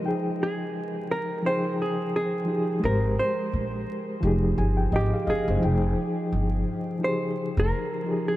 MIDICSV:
0, 0, Header, 1, 4, 480
1, 0, Start_track
1, 0, Key_signature, -4, "minor"
1, 0, Tempo, 697674
1, 28, Time_signature, 4, 2, 24, 8
1, 5756, End_track
2, 0, Start_track
2, 0, Title_t, "Hollow-body jazz guitar"
2, 0, Program_c, 0, 26
2, 296, Note_on_c, 0, 68, 87
2, 734, Note_off_c, 0, 68, 0
2, 766, Note_on_c, 0, 70, 103
2, 981, Note_off_c, 0, 70, 0
2, 1006, Note_on_c, 0, 72, 114
2, 1221, Note_off_c, 0, 72, 0
2, 1250, Note_on_c, 0, 68, 81
2, 1478, Note_off_c, 0, 68, 0
2, 1486, Note_on_c, 0, 68, 97
2, 1930, Note_off_c, 0, 68, 0
2, 1962, Note_on_c, 0, 70, 93
2, 2179, Note_off_c, 0, 70, 0
2, 2197, Note_on_c, 0, 72, 86
2, 2645, Note_off_c, 0, 72, 0
2, 3411, Note_on_c, 0, 67, 84
2, 3623, Note_off_c, 0, 67, 0
2, 3645, Note_on_c, 0, 68, 88
2, 4846, Note_on_c, 0, 72, 81
2, 4872, Note_off_c, 0, 68, 0
2, 5225, Note_off_c, 0, 72, 0
2, 5226, Note_on_c, 0, 70, 91
2, 5695, Note_off_c, 0, 70, 0
2, 5698, Note_on_c, 0, 68, 76
2, 5756, Note_off_c, 0, 68, 0
2, 5756, End_track
3, 0, Start_track
3, 0, Title_t, "Reed electric piano"
3, 0, Program_c, 1, 4
3, 0, Control_c, 1, 64, 127
3, 8, Note_on_c, 1, 53, 79
3, 24, Note_on_c, 1, 63, 72
3, 36, Control_c, 1, 64, 0
3, 38, Note_on_c, 1, 79, 75
3, 54, Note_on_c, 1, 68, 88
3, 148, Control_c, 1, 64, 127
3, 666, Note_off_c, 1, 53, 0
3, 674, Note_off_c, 1, 63, 0
3, 681, Note_off_c, 1, 79, 0
3, 689, Note_off_c, 1, 68, 0
3, 980, Note_on_c, 1, 53, 67
3, 997, Note_on_c, 1, 63, 65
3, 1010, Note_on_c, 1, 79, 61
3, 1024, Note_on_c, 1, 68, 85
3, 1461, Note_off_c, 1, 53, 0
3, 1470, Note_off_c, 1, 63, 0
3, 1476, Note_off_c, 1, 79, 0
3, 1484, Note_off_c, 1, 68, 0
3, 1688, Note_on_c, 1, 53, 69
3, 1702, Note_on_c, 1, 63, 57
3, 1716, Note_on_c, 1, 67, 61
3, 1729, Note_on_c, 1, 68, 70
3, 1868, Note_off_c, 1, 53, 0
3, 1876, Note_off_c, 1, 63, 0
3, 1882, Note_off_c, 1, 67, 0
3, 1889, Note_off_c, 1, 68, 0
3, 1924, Note_on_c, 1, 56, 75
3, 1940, Note_on_c, 1, 67, 66
3, 1954, Note_on_c, 1, 70, 66
3, 1955, Control_c, 1, 64, 0
3, 1969, Note_on_c, 1, 72, 77
3, 2091, Control_c, 1, 64, 127
3, 2584, Note_off_c, 1, 56, 0
3, 2592, Note_off_c, 1, 67, 0
3, 2599, Note_off_c, 1, 70, 0
3, 2606, Note_off_c, 1, 72, 0
3, 2895, Note_on_c, 1, 53, 95
3, 2906, Note_on_c, 1, 63, 75
3, 2916, Control_c, 1, 64, 0
3, 2922, Note_on_c, 1, 67, 83
3, 2937, Note_on_c, 1, 68, 92
3, 3035, Control_c, 1, 64, 127
3, 3147, Note_off_c, 1, 63, 0
3, 3153, Note_on_c, 1, 80, 79
3, 3155, Note_off_c, 1, 67, 0
3, 3163, Note_off_c, 1, 68, 0
3, 3278, Note_off_c, 1, 80, 0
3, 3282, Note_on_c, 1, 79, 65
3, 3379, Note_off_c, 1, 53, 0
3, 3379, Note_off_c, 1, 79, 0
3, 3392, Note_on_c, 1, 75, 84
3, 3532, Note_on_c, 1, 77, 66
3, 3535, Note_on_c, 1, 68, 56
3, 3613, Note_off_c, 1, 75, 0
3, 3616, Note_off_c, 1, 77, 0
3, 3624, Note_on_c, 1, 77, 69
3, 3625, Note_on_c, 1, 75, 73
3, 3628, Note_off_c, 1, 68, 0
3, 3628, Note_on_c, 1, 67, 57
3, 3757, Note_off_c, 1, 75, 0
3, 3758, Note_off_c, 1, 67, 0
3, 3785, Note_on_c, 1, 72, 71
3, 3790, Note_on_c, 1, 63, 53
3, 3849, Note_off_c, 1, 77, 0
3, 3853, Note_on_c, 1, 53, 80
3, 3857, Note_off_c, 1, 63, 0
3, 3865, Note_on_c, 1, 63, 61
3, 3877, Control_c, 1, 64, 0
3, 3883, Note_on_c, 1, 79, 67
3, 3897, Note_on_c, 1, 68, 78
3, 3985, Control_c, 1, 64, 127
3, 4003, Note_off_c, 1, 72, 0
3, 4508, Note_off_c, 1, 53, 0
3, 4515, Note_off_c, 1, 63, 0
3, 4524, Note_off_c, 1, 79, 0
3, 4531, Note_off_c, 1, 68, 0
3, 4808, Note_on_c, 1, 53, 65
3, 4823, Note_on_c, 1, 63, 61
3, 4837, Note_on_c, 1, 67, 68
3, 4853, Note_on_c, 1, 68, 85
3, 5295, Note_off_c, 1, 53, 0
3, 5303, Note_off_c, 1, 63, 0
3, 5310, Note_off_c, 1, 67, 0
3, 5318, Note_off_c, 1, 68, 0
3, 5533, Note_on_c, 1, 53, 68
3, 5548, Note_on_c, 1, 63, 55
3, 5560, Note_on_c, 1, 67, 57
3, 5577, Note_on_c, 1, 68, 72
3, 5711, Note_off_c, 1, 53, 0
3, 5719, Note_off_c, 1, 63, 0
3, 5725, Note_off_c, 1, 67, 0
3, 5733, Note_off_c, 1, 68, 0
3, 5756, End_track
4, 0, Start_track
4, 0, Title_t, "Upright bass"
4, 0, Program_c, 2, 32
4, 1951, Note_on_c, 2, 32, 104
4, 2158, Note_off_c, 2, 32, 0
4, 2431, Note_on_c, 2, 34, 76
4, 2638, Note_off_c, 2, 34, 0
4, 2908, Note_on_c, 2, 29, 98
4, 3117, Note_off_c, 2, 29, 0
4, 3149, Note_on_c, 2, 31, 92
4, 3357, Note_off_c, 2, 31, 0
4, 3385, Note_on_c, 2, 32, 87
4, 3505, Note_off_c, 2, 32, 0
4, 3626, Note_on_c, 2, 31, 86
4, 3746, Note_off_c, 2, 31, 0
4, 3768, Note_on_c, 2, 30, 91
4, 3857, Note_off_c, 2, 30, 0
4, 3870, Note_on_c, 2, 29, 97
4, 4078, Note_off_c, 2, 29, 0
4, 4351, Note_on_c, 2, 31, 85
4, 4558, Note_off_c, 2, 31, 0
4, 5209, Note_on_c, 2, 29, 94
4, 5297, Note_off_c, 2, 29, 0
4, 5756, End_track
0, 0, End_of_file